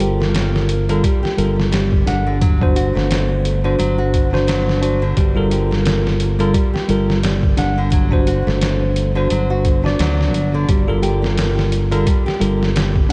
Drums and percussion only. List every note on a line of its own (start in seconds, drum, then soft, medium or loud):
0.00 closed hi-hat medium
0.22 snare soft
0.35 snare loud
0.35 closed hi-hat medium
0.56 snare soft
0.69 closed hi-hat medium
0.89 closed hi-hat soft
1.04 kick loud
1.04 closed hi-hat medium
1.25 snare soft
1.38 closed hi-hat medium
1.60 snare soft
1.73 snare loud
1.73 closed hi-hat medium
1.92 kick medium
2.07 snare soft
2.07 closed hi-hat medium
2.41 kick loud
2.41 closed hi-hat medium
2.62 kick medium
2.76 closed hi-hat medium
2.97 snare soft
3.11 snare loud
3.11 closed hi-hat medium
3.45 closed hi-hat medium
3.80 closed hi-hat medium
4.14 kick medium
4.14 closed hi-hat medium
4.35 snare soft
4.48 snare loud
4.48 closed hi-hat medium
4.69 snare soft
4.83 closed hi-hat medium
5.17 kick loud
5.17 closed hi-hat medium
5.51 closed hi-hat medium
5.73 snare soft
5.86 snare loud
5.86 closed hi-hat medium
6.07 snare soft
6.20 closed hi-hat medium
6.40 closed hi-hat soft
6.54 kick loud
6.54 closed hi-hat medium
6.76 snare soft
6.89 closed hi-hat medium
7.10 snare soft
7.23 snare loud
7.23 closed hi-hat medium
7.43 kick medium
7.57 snare soft
7.57 closed hi-hat medium
7.92 kick loud
7.92 closed hi-hat medium
8.12 kick medium
8.27 closed hi-hat medium
8.48 snare soft
8.61 snare loud
8.61 closed hi-hat medium
8.96 closed hi-hat medium
9.30 closed hi-hat medium
9.65 kick medium
9.65 closed hi-hat medium
9.86 snare soft
9.99 snare loud
9.99 closed hi-hat medium
10.21 snare soft
10.34 closed hi-hat medium
10.69 kick loud
10.69 closed hi-hat medium
11.03 closed hi-hat medium
11.24 snare soft
11.38 snare loud
11.38 closed hi-hat medium
11.59 snare soft
11.72 closed hi-hat medium
11.92 closed hi-hat soft
12.07 kick loud
12.07 closed hi-hat medium
12.28 snare soft
12.41 closed hi-hat medium
12.63 snare soft
12.76 snare loud
12.76 closed hi-hat medium
12.96 kick medium